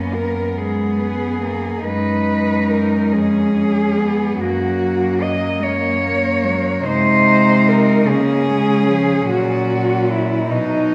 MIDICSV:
0, 0, Header, 1, 5, 480
1, 0, Start_track
1, 0, Key_signature, 6, "major"
1, 0, Tempo, 851064
1, 1042, Time_signature, 6, 3, 24, 8
1, 2478, Tempo, 817439
1, 6326, End_track
2, 0, Start_track
2, 0, Title_t, "Cello"
2, 0, Program_c, 0, 42
2, 0, Note_on_c, 0, 61, 50
2, 81, Note_on_c, 0, 70, 47
2, 89, Note_off_c, 0, 61, 0
2, 322, Note_on_c, 0, 68, 47
2, 331, Note_off_c, 0, 70, 0
2, 1042, Note_off_c, 0, 68, 0
2, 1046, Note_on_c, 0, 71, 68
2, 1524, Note_on_c, 0, 70, 52
2, 1533, Note_off_c, 0, 71, 0
2, 1769, Note_on_c, 0, 68, 60
2, 1777, Note_off_c, 0, 70, 0
2, 2474, Note_off_c, 0, 68, 0
2, 2477, Note_on_c, 0, 66, 69
2, 2964, Note_on_c, 0, 75, 66
2, 2973, Note_off_c, 0, 66, 0
2, 3206, Note_on_c, 0, 73, 64
2, 3214, Note_off_c, 0, 75, 0
2, 3929, Note_off_c, 0, 73, 0
2, 3932, Note_on_c, 0, 72, 77
2, 4410, Note_on_c, 0, 70, 70
2, 4419, Note_off_c, 0, 72, 0
2, 4645, Note_on_c, 0, 68, 84
2, 4653, Note_off_c, 0, 70, 0
2, 5353, Note_off_c, 0, 68, 0
2, 5360, Note_on_c, 0, 66, 76
2, 5831, Note_on_c, 0, 64, 64
2, 5840, Note_off_c, 0, 66, 0
2, 6073, Note_on_c, 0, 63, 74
2, 6082, Note_off_c, 0, 64, 0
2, 6326, Note_off_c, 0, 63, 0
2, 6326, End_track
3, 0, Start_track
3, 0, Title_t, "Cello"
3, 0, Program_c, 1, 42
3, 0, Note_on_c, 1, 59, 36
3, 1020, Note_off_c, 1, 59, 0
3, 1038, Note_on_c, 1, 63, 39
3, 1761, Note_on_c, 1, 61, 46
3, 1770, Note_off_c, 1, 63, 0
3, 2004, Note_off_c, 1, 61, 0
3, 2007, Note_on_c, 1, 61, 43
3, 2244, Note_on_c, 1, 59, 50
3, 2252, Note_off_c, 1, 61, 0
3, 2483, Note_on_c, 1, 58, 44
3, 2492, Note_off_c, 1, 59, 0
3, 3201, Note_off_c, 1, 58, 0
3, 3204, Note_on_c, 1, 58, 49
3, 3914, Note_off_c, 1, 58, 0
3, 3930, Note_on_c, 1, 63, 47
3, 4644, Note_on_c, 1, 61, 56
3, 4653, Note_off_c, 1, 63, 0
3, 6067, Note_off_c, 1, 61, 0
3, 6070, Note_on_c, 1, 63, 52
3, 6326, Note_off_c, 1, 63, 0
3, 6326, End_track
4, 0, Start_track
4, 0, Title_t, "Cello"
4, 0, Program_c, 2, 42
4, 0, Note_on_c, 2, 58, 37
4, 316, Note_off_c, 2, 58, 0
4, 320, Note_on_c, 2, 56, 39
4, 559, Note_on_c, 2, 59, 43
4, 567, Note_off_c, 2, 56, 0
4, 796, Note_off_c, 2, 59, 0
4, 800, Note_on_c, 2, 58, 42
4, 1040, Note_on_c, 2, 56, 45
4, 1048, Note_off_c, 2, 58, 0
4, 2473, Note_off_c, 2, 56, 0
4, 2476, Note_on_c, 2, 54, 48
4, 3199, Note_on_c, 2, 58, 53
4, 3207, Note_off_c, 2, 54, 0
4, 3439, Note_off_c, 2, 58, 0
4, 3442, Note_on_c, 2, 58, 50
4, 3689, Note_on_c, 2, 54, 56
4, 3697, Note_off_c, 2, 58, 0
4, 3929, Note_on_c, 2, 56, 53
4, 3937, Note_off_c, 2, 54, 0
4, 4637, Note_on_c, 2, 58, 53
4, 4646, Note_off_c, 2, 56, 0
4, 4878, Note_on_c, 2, 56, 56
4, 4887, Note_off_c, 2, 58, 0
4, 5113, Note_on_c, 2, 53, 63
4, 5122, Note_off_c, 2, 56, 0
4, 5350, Note_off_c, 2, 53, 0
4, 5356, Note_on_c, 2, 54, 55
4, 6055, Note_off_c, 2, 54, 0
4, 6070, Note_on_c, 2, 54, 52
4, 6326, Note_off_c, 2, 54, 0
4, 6326, End_track
5, 0, Start_track
5, 0, Title_t, "Cello"
5, 0, Program_c, 3, 42
5, 0, Note_on_c, 3, 42, 42
5, 1021, Note_off_c, 3, 42, 0
5, 1048, Note_on_c, 3, 42, 47
5, 1766, Note_on_c, 3, 41, 48
5, 1775, Note_off_c, 3, 42, 0
5, 2476, Note_off_c, 3, 41, 0
5, 2479, Note_on_c, 3, 42, 53
5, 3906, Note_off_c, 3, 42, 0
5, 3928, Note_on_c, 3, 48, 61
5, 4628, Note_off_c, 3, 48, 0
5, 4642, Note_on_c, 3, 49, 54
5, 5337, Note_off_c, 3, 49, 0
5, 5351, Note_on_c, 3, 46, 62
5, 6067, Note_on_c, 3, 47, 59
5, 6076, Note_off_c, 3, 46, 0
5, 6326, Note_off_c, 3, 47, 0
5, 6326, End_track
0, 0, End_of_file